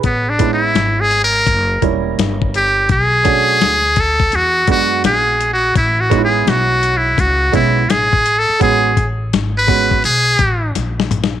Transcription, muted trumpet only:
0.05 B3
0.30 D4
0.53 E4
1.00 G#4
1.24 A#4
2.56 G4
2.92 G#4
4.00 A4
4.35 F#4
4.71 F#4
5.05 G#4
5.53 F#4
5.77 E4
6.01 F#4
6.25 G#4
6.49 F#4
6.97 E4
7.20 F#4
7.55 E4
7.90 G#4
8.39 A4
8.62 G#4
9.58 B4
10.05 G#4

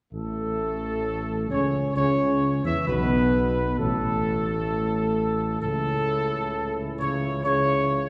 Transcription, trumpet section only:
0.13 A4
1.51 C#5
1.96 C#5
2.66 E5
2.87 B4
3.79 A4
5.60 A4
6.99 C#5
7.44 C#5

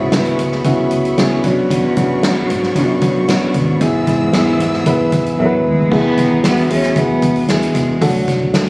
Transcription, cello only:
Already playing: G#2
1.71 E2
2.24 F#2
2.50 G#2
2.76 F#2
3.04 F#2
3.56 G#2
5.39 F#3
5.66 G#3
5.93 B3
6.45 B3
6.71 C#4
6.97 B3
7.49 G#3
8.02 F#3

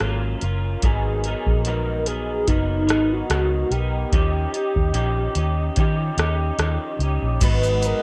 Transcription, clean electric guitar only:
0.00 F#3 A#3 C#4 F4 A#4
0.42 C#4 F4 A#4
0.83 G#2 D#3 F#3 B3 D#4 A#4
1.26 F#3 B3 D#4 A#4
1.66 G#2 D#3 F#3 B3 D#4 A#4
2.07 F#3 B3 D#4 A#4
2.48 F#3 B3 D#4 A#4
2.87 F#3 B3 D#4 A#4
3.30 G#2 D#3 F#3 B3 D#4 A#4
3.71 B3 D#4 A#4
4.12 D#3 F3 C#4 D#4 G4
4.53 C#4 D#4 G4
4.94 D#3 F3 C#4 D#4 G4
5.35 C#4 D#4 G4
5.76 F3 C#4 D#4 G4
6.18 C#4 D#4 G4
6.60 D#3 F3 C#4 D#4 G4
7.01 C#4 D#4 G4
7.40 G#2 D#3 F#3 B3 D#4
7.81 F#3 B3 D#4

